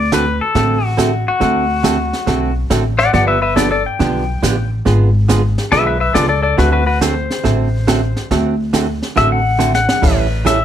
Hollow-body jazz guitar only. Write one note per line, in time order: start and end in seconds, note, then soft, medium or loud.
0.12 0.24 D3 medium
0.12 0.24 A3 medium
0.12 0.25 C4 medium
0.12 0.25 F#4 medium
0.12 0.25 A4 medium
0.55 0.78 D3 medium
0.55 0.78 A3 medium
0.55 0.78 C4 medium
0.55 0.79 F#4 medium
0.55 0.79 A4 medium
0.97 1.10 D3 medium
0.97 1.10 A3 medium
0.97 1.10 C4 medium
0.97 1.11 F#4 medium
0.97 1.11 A4 medium
1.40 1.64 D3 medium
1.40 1.64 A3 medium
1.40 1.64 C4 medium
1.40 1.64 F#4 medium
1.40 1.64 A4 medium
1.83 1.96 D3 medium
1.83 1.97 A3 medium
1.83 1.97 C4 medium
1.83 1.97 F#4 medium
1.83 1.97 A4 medium
2.26 2.50 D3 medium
2.26 2.50 A3 medium
2.26 2.51 C4 medium
2.26 2.51 F#4 medium
2.26 2.51 A4 medium
2.70 2.83 D3 medium
2.70 2.83 A3 medium
2.70 2.83 C4 medium
2.70 2.83 F#4 medium
2.70 2.83 A4 medium
3.13 3.37 D3 medium
3.13 3.37 F3 medium
3.13 3.37 B3 medium
3.13 3.37 D4 medium
3.13 3.37 G4 medium
3.56 3.69 D3 medium
3.56 3.69 F3 medium
3.56 3.69 B3 medium
3.56 3.69 D4 medium
3.56 3.69 G4 medium
3.99 4.23 D3 medium
3.99 4.23 F3 medium
3.99 4.23 B3 medium
3.99 4.23 D4 medium
3.99 4.23 G4 medium
4.42 4.55 D3 medium
4.42 4.55 F3 medium
4.42 4.55 B3 medium
4.42 4.56 D4 medium
4.42 4.56 G4 medium
4.85 5.09 D3 medium
4.85 5.09 G#3 medium
4.85 5.09 B3 medium
4.85 5.09 F4 medium
4.85 5.09 G#4 medium
5.28 5.41 D3 medium
5.28 5.41 G#3 medium
5.28 5.41 B3 medium
5.28 5.41 F4 medium
5.28 5.42 G#4 medium
5.72 5.95 D3 medium
5.72 5.95 G#3 medium
5.72 5.95 B3 medium
5.72 5.95 F4 medium
5.72 5.96 G#4 medium
6.15 6.27 D3 medium
6.15 6.27 G#3 medium
6.15 6.27 B3 medium
6.15 6.28 F4 medium
6.15 6.28 G#4 medium
6.58 6.81 D3 medium
6.58 6.81 A3 medium
6.58 6.81 C4 medium
6.58 6.81 F#4 medium
6.58 6.82 A4 medium
7.01 7.14 D3 medium
7.01 7.14 A3 medium
7.01 7.14 C4 medium
7.01 7.14 F#4 medium
7.01 7.14 A4 medium
7.44 7.67 D3 medium
7.44 7.67 A3 medium
7.44 7.67 C4 medium
7.44 7.68 F#4 medium
7.44 7.68 A4 medium
7.87 8.00 D3 medium
7.87 8.00 A3 medium
7.87 8.00 C4 medium
7.87 8.00 F#4 medium
7.87 8.00 A4 medium
8.31 8.54 D3 medium
8.31 8.54 A3 medium
8.31 8.54 C4 medium
8.31 8.54 F#4 medium
8.31 8.54 A4 medium
8.73 8.86 D3 medium
8.73 8.86 A3 medium
8.73 8.86 C4 medium
8.73 8.86 F#4 medium
8.73 8.86 A4 medium
9.16 9.39 D3 medium
9.16 9.40 A3 medium
9.16 9.40 C4 medium
9.16 9.40 F#4 medium
9.16 9.40 A4 medium
9.59 9.71 D3 medium
9.59 9.72 A3 medium
9.59 9.72 C4 medium
9.59 9.72 F#4 medium
9.59 9.72 A4 medium
10.02 10.25 E3 medium
10.02 10.26 G3 medium
10.02 10.26 C#4 medium
10.02 10.26 E4 medium
10.02 10.26 A4 medium
10.45 10.58 E3 medium
10.45 10.58 G3 medium
10.45 10.58 C#4 medium
10.45 10.58 E4 medium
10.45 10.58 A4 medium